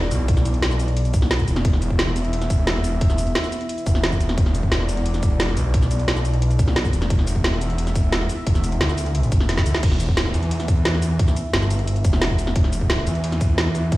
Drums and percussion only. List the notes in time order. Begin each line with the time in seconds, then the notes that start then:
0.03 snare
0.11 closed hi-hat, cabasa
0.28 kick, closed hi-hat
0.37 snare, cabasa
0.45 closed hi-hat, cabasa
0.54 closed hi-hat
0.62 snare, closed hi-hat
0.71 snare, cabasa
0.80 closed hi-hat, cabasa
0.88 closed hi-hat
0.97 closed hi-hat
1.05 closed hi-hat, cabasa
1.14 kick, closed hi-hat, cabasa
1.22 snare
1.31 snare, closed hi-hat
1.39 kick, cabasa
1.48 closed hi-hat, cabasa
1.56 snare, closed hi-hat
1.65 kick, closed hi-hat
1.73 snare
1.82 closed hi-hat, cabasa
1.90 kick
1.99 snare, closed hi-hat
2.07 snare
2.16 closed hi-hat, cabasa
2.25 closed hi-hat
2.33 closed hi-hat
2.42 snare, closed hi-hat, cabasa
2.50 kick, closed hi-hat, cabasa
2.67 snare, closed hi-hat
2.76 snare
2.84 closed hi-hat, cabasa
3.01 kick, closed hi-hat
3.10 snare, cabasa
3.18 closed hi-hat, cabasa
3.27 closed hi-hat
3.35 snare, closed hi-hat
3.44 snare, cabasa
3.52 closed hi-hat, cabasa
3.61 closed hi-hat
3.69 closed hi-hat
3.78 closed hi-hat, cabasa
3.86 kick, closed hi-hat, cabasa
3.95 snare
4.04 snare, closed hi-hat
4.12 kick, cabasa
4.21 closed hi-hat, cabasa
4.29 snare, closed hi-hat
4.38 kick, closed hi-hat
4.46 snare
4.55 closed hi-hat, cabasa
4.63 kick
4.72 snare, closed hi-hat
4.80 snare
4.89 closed hi-hat, cabasa
4.97 closed hi-hat
5.06 closed hi-hat
5.14 snare, closed hi-hat, cabasa
5.23 kick, closed hi-hat, cabasa
5.40 snare, closed hi-hat
5.48 snare
5.57 closed hi-hat, cabasa
5.74 kick, closed hi-hat
5.82 snare, cabasa
5.91 closed hi-hat, cabasa
5.99 closed hi-hat
6.08 snare, closed hi-hat
6.17 snare, cabasa
6.25 closed hi-hat, cabasa
6.34 closed hi-hat
6.42 closed hi-hat
6.51 closed hi-hat, cabasa
6.59 kick, closed hi-hat, cabasa
6.68 snare
6.76 snare, closed hi-hat
6.85 kick, cabasa
6.93 closed hi-hat, cabasa
7.02 snare, closed hi-hat
7.10 kick, closed hi-hat
7.19 snare
7.27 closed hi-hat, cabasa
7.36 kick
7.44 snare, closed hi-hat
7.53 snare
7.61 closed hi-hat, cabasa
7.70 closed hi-hat
7.78 closed hi-hat
7.87 snare, closed hi-hat, cabasa
7.95 kick, closed hi-hat, cabasa
8.12 snare, closed hi-hat
8.21 snare
8.30 closed hi-hat, cabasa
8.47 kick, closed hi-hat
8.55 snare, cabasa
8.64 closed hi-hat, cabasa
8.72 closed hi-hat
8.81 snare, closed hi-hat
8.89 snare, cabasa
8.98 closed hi-hat, cabasa
9.06 closed hi-hat
9.15 closed hi-hat
9.23 closed hi-hat, cabasa
9.32 kick, closed hi-hat, cabasa
9.40 snare
9.49 snare, closed hi-hat
9.57 kick, snare, cabasa
9.66 closed hi-hat, cabasa
9.74 snare, closed hi-hat
9.83 kick, closed hi-hat, crash
9.92 snare
10.00 closed hi-hat, cabasa
10.09 kick
10.17 snare, closed hi-hat
10.25 snare
10.34 closed hi-hat, cabasa
10.43 closed hi-hat
10.51 closed hi-hat
10.60 snare, closed hi-hat, cabasa
10.68 kick, closed hi-hat, cabasa
10.85 snare, closed hi-hat
10.94 snare
11.02 closed hi-hat, cabasa
11.19 kick, closed hi-hat
11.28 snare, cabasa
11.36 closed hi-hat, cabasa
11.53 snare, closed hi-hat
11.62 snare, cabasa
11.71 closed hi-hat, cabasa
11.79 closed hi-hat
11.87 closed hi-hat
11.96 closed hi-hat, cabasa
12.04 kick, closed hi-hat, cabasa
12.13 snare
12.22 snare, closed hi-hat
12.30 kick
12.39 closed hi-hat, cabasa
12.47 snare
12.56 kick, closed hi-hat
12.64 snare
12.73 closed hi-hat, cabasa
12.81 kick
12.90 snare, closed hi-hat
12.98 snare
13.07 closed hi-hat, cabasa
13.15 closed hi-hat
13.24 closed hi-hat
13.32 snare, closed hi-hat, cabasa
13.41 kick, closed hi-hat, cabasa
13.58 snare, closed hi-hat
13.66 snare
13.75 closed hi-hat, cabasa
13.92 kick, closed hi-hat